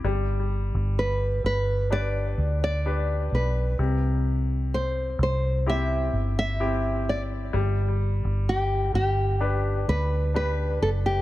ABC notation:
X:1
M:4/4
L:1/16
Q:1/4=64
K:G
V:1 name="Nylon-string guitar"
z4 B2 B2 d3 d3 B2 | z4 c2 c2 e3 e3 d2 | z4 G2 G4 B2 B2 A G |]
V:2 name="Grand piano"
G,8 [DGB]4 [DGB]4 | C,8 [CEG]4 [CEG]4 | G,8 [DGB]4 [DGB]4 |]
V:3 name="Fingered electric bass" clef=bass
G,,,3 G,,,3 G,,,4 D,,4 B,,,2 | C,,6 C,,4 G,,,6 | G,,,3 G,,,3 G,,,4 D,,4 F,,,2 |]